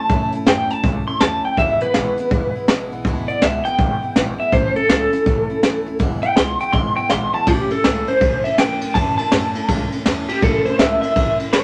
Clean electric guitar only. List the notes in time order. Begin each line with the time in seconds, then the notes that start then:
Already playing: A5
0.48 G5
0.71 A5
1.08 C6
1.21 A5
1.45 G5
1.58 E5
1.82 B4
3.28 D5
3.42 E5
3.65 G5
4.40 E5
4.53 C5
4.76 A4
4.90 A4
6.23 G5
6.37 C6
6.61 G5
6.73 C6
6.96 G5
7.10 C6
7.34 A5
7.48 G4
7.71 A4
8.08 C5
8.44 E5
8.58 G5
8.94 A5
9.18 A5
10.29 G4
10.43 A4
10.65 C5
10.79 E5
11.02 E5
11.53 C#5